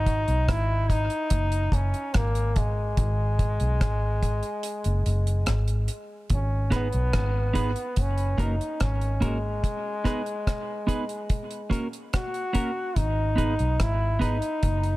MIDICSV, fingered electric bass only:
0, 0, Header, 1, 2, 480
1, 0, Start_track
1, 0, Key_signature, 5, "minor"
1, 0, Tempo, 832178
1, 1717, Time_signature, 4, 2, 24, 8
1, 8633, End_track
2, 0, Start_track
2, 0, Title_t, "Fingered electric bass"
2, 0, Program_c, 0, 33
2, 0, Note_on_c, 0, 32, 117
2, 142, Note_off_c, 0, 32, 0
2, 163, Note_on_c, 0, 35, 81
2, 274, Note_off_c, 0, 35, 0
2, 280, Note_on_c, 0, 32, 107
2, 622, Note_off_c, 0, 32, 0
2, 759, Note_on_c, 0, 30, 99
2, 987, Note_off_c, 0, 30, 0
2, 996, Note_on_c, 0, 30, 93
2, 1110, Note_off_c, 0, 30, 0
2, 1243, Note_on_c, 0, 32, 89
2, 1698, Note_off_c, 0, 32, 0
2, 1720, Note_on_c, 0, 32, 112
2, 2062, Note_off_c, 0, 32, 0
2, 2082, Note_on_c, 0, 35, 78
2, 2194, Note_off_c, 0, 35, 0
2, 2202, Note_on_c, 0, 32, 89
2, 2543, Note_off_c, 0, 32, 0
2, 2801, Note_on_c, 0, 30, 88
2, 2913, Note_off_c, 0, 30, 0
2, 2920, Note_on_c, 0, 30, 83
2, 3147, Note_off_c, 0, 30, 0
2, 3162, Note_on_c, 0, 32, 85
2, 3388, Note_off_c, 0, 32, 0
2, 3639, Note_on_c, 0, 32, 101
2, 3982, Note_off_c, 0, 32, 0
2, 4006, Note_on_c, 0, 35, 74
2, 4116, Note_off_c, 0, 35, 0
2, 4122, Note_on_c, 0, 32, 96
2, 4463, Note_off_c, 0, 32, 0
2, 4601, Note_on_c, 0, 30, 90
2, 4828, Note_off_c, 0, 30, 0
2, 4839, Note_on_c, 0, 30, 86
2, 4953, Note_off_c, 0, 30, 0
2, 5087, Note_on_c, 0, 32, 85
2, 5541, Note_off_c, 0, 32, 0
2, 7483, Note_on_c, 0, 32, 104
2, 7825, Note_off_c, 0, 32, 0
2, 7847, Note_on_c, 0, 35, 74
2, 7958, Note_off_c, 0, 35, 0
2, 7964, Note_on_c, 0, 32, 98
2, 8306, Note_off_c, 0, 32, 0
2, 8444, Note_on_c, 0, 30, 97
2, 8633, Note_off_c, 0, 30, 0
2, 8633, End_track
0, 0, End_of_file